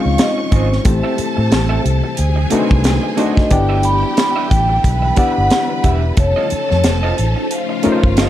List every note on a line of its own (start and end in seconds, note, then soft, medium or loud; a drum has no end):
0.00 0.84 C#3 medium
0.00 0.84 F3 medium
0.00 0.82 G#3 medium
0.00 0.87 G#3 medium
0.00 0.84 C4 medium
0.00 0.82 C#4 medium
0.00 0.87 C#4 loud
0.00 0.84 D#4 medium
0.00 0.88 D#4 medium
0.00 0.87 F4 medium
0.00 0.86 C5 loud
0.00 0.22 F5 loud
0.00 0.82 C#6 loud
0.04 0.16 C#2 medium
0.04 muted clean electric guitar stroke soft
0.18 0.54 D#5 medium
0.18 snare loud
0.18 closed hi-hat medium
0.38 muted clean electric guitar stroke soft
0.51 0.78 G#1 medium
0.51 0.72 C4 medium
0.51 0.71 F4 medium
0.51 0.70 G#4 medium
0.51 0.70 D#5 medium
0.51 kick loud
0.51 closed hi-hat medium
0.55 2.50 C5 medium
0.71 muted clean electric guitar stroke soft
0.71 snare soft
0.84 1.00 A1 loud
0.84 3.49 C3 medium
0.84 2.17 E3 medium
0.84 2.18 G3 medium
0.84 2.11 A3 medium
0.84 2.17 A3 medium
0.84 2.12 C4 medium
0.84 2.17 E4 medium
0.84 2.12 E4 medium
0.84 2.12 G4 medium
0.84 2.16 A4 medium
0.84 2.12 C5 medium
0.84 2.16 A5 loud
0.84 muted clean electric guitar stroke soft
0.84 kick loud
0.84 closed hi-hat loud
1.03 1.16 C4 medium
1.03 1.16 G4 medium
1.03 1.17 A4 medium
1.03 1.17 E5 medium
1.17 muted clean electric guitar stroke soft
1.17 muted fingered electric bass stroke soft
1.17 closed hi-hat medium
1.37 1.49 A2 loud
1.37 muted clean electric guitar stroke soft
1.50 1.77 A1 loud
1.50 muted clean electric guitar stroke soft
1.50 snare loud
1.50 closed hi-hat medium
1.69 1.82 C4 medium
1.69 1.83 G4 medium
1.69 1.83 A4 medium
1.69 1.84 E5 medium
1.84 2.00 C2 loud
1.84 muted clean electric guitar stroke soft
1.84 closed hi-hat medium
2.04 muted clean electric guitar stroke soft
2.17 2.44 D2 loud
2.17 3.52 D3 medium
2.17 3.52 D#3 medium
2.17 3.51 F#3 medium
2.17 3.52 A3 medium
2.17 3.49 G#4 medium
2.17 3.49 G#5 loud
2.17 closed hi-hat medium
2.36 muted clean electric guitar stroke soft
2.50 3.15 A3 medium
2.50 2.71 C4 medium
2.50 3.15 D4 medium
2.50 3.15 D#4 medium
2.50 2.69 F#4 medium
2.50 3.15 F#4 medium
2.50 2.68 A4 medium
2.50 2.60 B4 medium
2.50 2.68 D#5 medium
2.50 muted fingered electric bass stroke soft
2.50 closed hi-hat medium
2.59 3.18 C5 medium
2.69 2.97 C2 medium
2.69 muted clean electric guitar stroke soft
2.69 kick loud
2.83 muted clean electric guitar stroke soft
2.83 snare loud
2.83 closed hi-hat medium
3.03 muted clean electric guitar stroke soft
3.16 3.49 A3 medium
3.16 3.37 C4 medium
3.16 3.50 D4 medium
3.16 3.50 D#4 medium
3.16 3.36 F#4 medium
3.16 3.50 F#4 medium
3.16 3.35 A4 medium
3.16 3.50 C5 medium
3.16 3.35 D#5 medium
3.16 closed hi-hat medium
3.20 3.54 D#5 medium
3.36 muted clean electric guitar stroke soft
3.36 kick loud
3.36 snare soft
3.50 4.03 G1 loud
3.50 6.16 D3 medium
3.50 6.16 E3 medium
3.50 6.16 G3 medium
3.50 4.78 B3 medium
3.50 6.16 B3 medium
3.50 4.78 D4 medium
3.50 4.78 E4 medium
3.50 6.16 E4 medium
3.50 4.82 G4 medium
3.50 4.78 G4 medium
3.50 4.78 D5 medium
3.50 4.82 G5 medium
3.50 3.83 G5 loud
3.50 muted clean electric guitar stroke soft
3.50 kick loud
3.50 closed hi-hat medium
3.69 3.82 D4 medium
3.69 3.82 G4 medium
3.69 3.83 B4 medium
3.69 3.83 E5 medium
3.83 4.48 B5 loud
3.83 muted clean electric guitar stroke soft
3.83 closed hi-hat medium
4.03 muted clean electric guitar stroke soft
4.17 muted clean electric guitar stroke soft
4.17 snare loud
4.17 closed hi-hat medium
4.36 4.49 D4 medium
4.36 4.49 G4 medium
4.36 4.50 B4 medium
4.36 4.50 E5 medium
4.50 4.77 A1 loud
4.50 5.13 G5 loud
4.50 muted clean electric guitar stroke soft
4.50 kick loud
4.50 closed hi-hat medium
4.69 muted clean electric guitar stroke soft
4.84 5.10 B1 medium
4.84 6.15 B4 medium
4.84 6.15 B5 loud
4.84 kick medium
4.84 closed hi-hat medium
5.02 muted clean electric guitar stroke soft
5.16 6.18 B3 medium
5.16 5.37 D4 medium
5.16 6.18 D4 medium
5.16 6.18 E4 medium
5.16 5.35 G4 medium
5.16 6.18 G4 medium
5.16 5.35 B4 medium
5.16 6.18 D5 medium
5.16 5.34 E5 medium
5.16 5.87 F#5 loud
5.16 kick medium
5.16 closed hi-hat medium
5.35 5.49 G1 medium
5.35 muted clean electric guitar stroke soft
5.50 snare loud
5.50 closed hi-hat medium
5.69 muted clean electric guitar stroke soft
5.83 6.10 E1 medium
5.83 6.04 D4 medium
5.83 6.03 G4 medium
5.83 6.03 B4 medium
5.83 6.19 E5 medium
5.83 6.03 E5 medium
5.83 kick medium
5.83 closed hi-hat medium
6.04 muted clean electric guitar stroke soft
6.17 6.33 F1 loud
6.17 8.29 C#3 medium
6.17 8.29 F3 medium
6.17 8.29 A3 medium
6.17 8.29 C#4 medium
6.17 8.29 D#4 medium
6.17 7.48 A4 medium
6.17 6.87 C#5 medium
6.17 7.48 A5 loud
6.17 muted clean electric guitar stroke soft
6.17 kick loud
6.17 closed hi-hat medium
6.36 6.49 C#4 medium
6.36 6.49 F4 medium
6.36 6.50 A4 medium
6.36 6.50 D#5 medium
6.50 muted clean electric guitar stroke soft
6.50 muted fingered electric bass stroke medium
6.50 closed hi-hat medium
6.69 6.87 F2 loud
6.69 muted clean electric guitar stroke soft
6.69 snare soft
6.84 7.11 F1 loud
6.84 8.29 C5 medium
6.84 muted clean electric guitar stroke soft
6.84 snare loud
6.84 closed hi-hat loud
7.03 7.15 C#4 medium
7.03 7.16 F4 medium
7.03 7.16 A4 medium
7.03 7.16 D#5 medium
7.17 7.33 A1 medium
7.17 muted clean electric guitar stroke soft
7.17 closed hi-hat medium
7.36 muted clean electric guitar stroke soft
7.51 8.29 F4 medium
7.51 8.29 F5 medium
7.51 closed hi-hat medium
7.69 muted clean electric guitar stroke soft
7.83 8.29 A3 medium
7.83 8.04 C#4 medium
7.83 8.29 C#4 medium
7.83 8.29 D#4 medium
7.83 8.03 F4 medium
7.83 8.29 F4 medium
7.83 8.03 A4 medium
7.83 7.92 A#4 medium
7.83 8.02 D#5 medium
7.83 muted fingered electric bass stroke soft
7.83 closed hi-hat medium
7.92 8.29 C5 loud
8.03 8.29 G1 medium
8.03 muted clean electric guitar stroke soft
8.03 kick loud
8.17 8.29 C#4 medium
8.17 8.29 F4 medium
8.17 8.29 A4 medium
8.17 8.29 D#5 medium
8.17 snare loud
8.17 closed hi-hat medium